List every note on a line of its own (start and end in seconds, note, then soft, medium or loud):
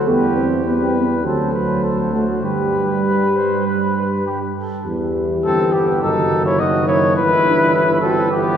0.08 1.26 E2 medium
0.08 0.49 G3 soft
0.08 0.39 B3 medium
0.08 0.94 G4 medium
0.08 0.50 B4 medium
0.38 0.66 C4 medium
0.65 1.25 G3 soft
0.65 0.82 B3 medium
0.65 1.23 B4 soft
0.81 0.97 C4 medium
0.95 1.24 B3 medium
1.24 2.44 D2 soft
1.24 2.43 F#3 soft
1.24 2.12 F#3 medium
1.24 1.52 A4 medium
1.24 2.47 C5 soft
1.53 1.85 B4 soft
1.83 2.13 A4 soft
2.13 2.27 A3 medium
2.13 2.45 F#4 soft
2.43 4.52 G2 soft
2.43 4.52 G3 soft
2.43 4.22 G3 medium
2.43 2.99 G4 soft
2.43 4.56 B4 soft
3.05 3.38 B4 medium
3.36 3.68 C5 medium
3.66 3.96 B4 medium
3.96 4.25 B4 soft
4.26 4.40 G4 soft
4.57 4.86 A4 soft
4.85 5.41 E2 medium
4.85 6.05 E3 medium
4.85 5.98 G4 medium
5.45 6.04 G1 soft
5.45 5.72 C4 medium
5.45 5.74 A4 medium
5.72 6.04 B3 medium
5.72 6.01 G4 medium
6.02 7.17 F#1 medium
6.02 6.60 D#3 medium
6.02 6.45 D#4 medium
6.02 6.62 F#4 medium
6.02 6.44 A4 medium
6.45 6.58 E4 medium
6.45 6.61 C#5 medium
6.59 7.19 D#3 medium
6.59 7.17 D#4 medium
6.59 6.86 F#4 medium
6.59 6.87 D#5 medium
6.87 7.00 E4 medium
6.87 7.16 C#5 medium
7.16 8.57 G1 medium
7.16 8.30 E3 medium
7.16 8.00 E4 medium
7.16 7.30 E4 medium
7.16 8.00 B4 medium
7.46 7.76 D4 medium
7.75 8.03 E4 medium
8.01 8.30 C4 medium
8.01 8.16 F#4 medium
8.01 8.29 A4 medium
8.31 8.57 E3 medium
8.31 8.57 B3 medium
8.31 8.57 E4 medium
8.31 8.57 G4 medium